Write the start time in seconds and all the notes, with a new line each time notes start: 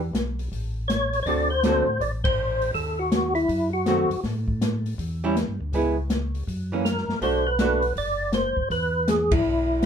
Already playing: E2
0.13 B1, snare, closed hi-hat
0.39 open hi-hat
0.52 A1, kick, open hi-hat
0.88 C#5, snare, closed hi-hat
1.13 open hi-hat
1.23 D2 C#5 D5, kick, open hi-hat
1.27 D3 A3 C4 F#4
1.50 C5
1.63 D3 A3 C4 F#4, snare, closed hi-hat
1.87 A2
2.00 A1 D5, kick, open hi-hat
2.24 C5, kick, ride
2.62 open hi-hat
2.74 D#2 A4, kick, open hi-hat
2.99 F#4
3.12 snare, closed hi-hat
3.35 E4, open hi-hat
3.48 F#2, kick, open hi-hat
3.73 F#4
3.86 D#3 A3 C4 F#4, snare, closed hi-hat
4.10 F#2, open hi-hat
4.24 A2, kick, snare, open hi-hat
4.48 kick
4.61 snare, closed hi-hat
4.86 open hi-hat
4.98 E2, kick, open hi-hat
5.24 G3 C#4 E4
5.36 snare, closed hi-hat
5.48 G2
5.61 D2
5.73 C#2 G#3 B3 E4, kick, open hi-hat
6.10 snare, closed hi-hat
6.35 open hi-hat
6.47 F#2, kick, open hi-hat
6.72 E3 A#3 C#4
6.85 A#4, snare, closed hi-hat
6.98 snare
7.08 F#2, snare
7.21 B1 A3 D4 F#4 C5, kick, open hi-hat
7.47 B4
7.59 A3 D4 F#4, snare, closed hi-hat
7.82 open hi-hat
7.96 F#1 D5, kick, open hi-hat
8.32 C5, snare, closed hi-hat
8.57 F#1, kick
8.70 E2 B4, kick, open hi-hat
9.08 G#4, snare, closed hi-hat
9.31 E4, kick, ride
9.45 B1
9.82 snare, closed hi-hat